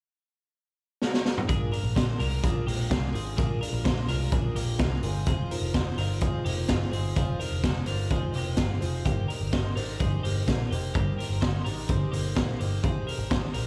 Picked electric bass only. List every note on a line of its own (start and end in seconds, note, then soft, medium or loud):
1.49 1.68 A#1 loud
1.84 1.94 A#1 medium
1.96 2.16 A#1 medium
2.19 2.39 C2 medium
2.43 2.63 A#1 loud
2.67 2.87 A#1 medium
2.91 3.10 C2 medium
3.14 3.38 G#1 loud
3.38 3.58 A#1 loud
3.73 3.83 A#1 loud
3.85 4.05 A#1 loud
4.08 4.28 C2 medium
4.32 4.52 A#1 loud
4.56 4.75 A#1 medium
4.79 4.99 C2 medium
5.03 5.23 G1 medium
5.27 5.46 F1 loud
5.62 5.72 F1 medium
5.75 5.94 F1 medium
5.97 6.22 G1 medium
6.22 6.41 F1 loud
6.45 6.69 F1 medium
6.69 6.88 G1 medium
6.93 7.12 G1 medium
7.16 7.36 F1 loud
7.52 7.62 F1 medium
7.64 7.83 F1 loud
7.88 8.11 G1 medium
8.11 8.30 F1 loud
8.34 8.54 F1 medium
8.58 8.77 G1 medium
8.82 9.01 F1 medium
9.05 9.25 G1 loud
9.41 9.51 G1 medium
9.53 9.72 G1 loud
9.76 9.96 G#1 loud
10.00 10.20 G1 loud
10.24 10.43 G1 medium
10.48 10.67 A#1 medium
10.71 10.90 F1 medium
10.95 11.14 G1 loud
11.30 11.40 G1 medium
11.42 11.62 G1 loud
11.66 11.85 G#1 medium
11.89 12.09 G1 loud
12.13 12.37 G1 medium
12.37 12.56 A#1 medium
12.60 12.80 G1 medium
12.84 13.03 G#1 loud
13.18 13.29 G#1 medium
13.31 13.51 G#1 medium
13.55 13.67 A#1 medium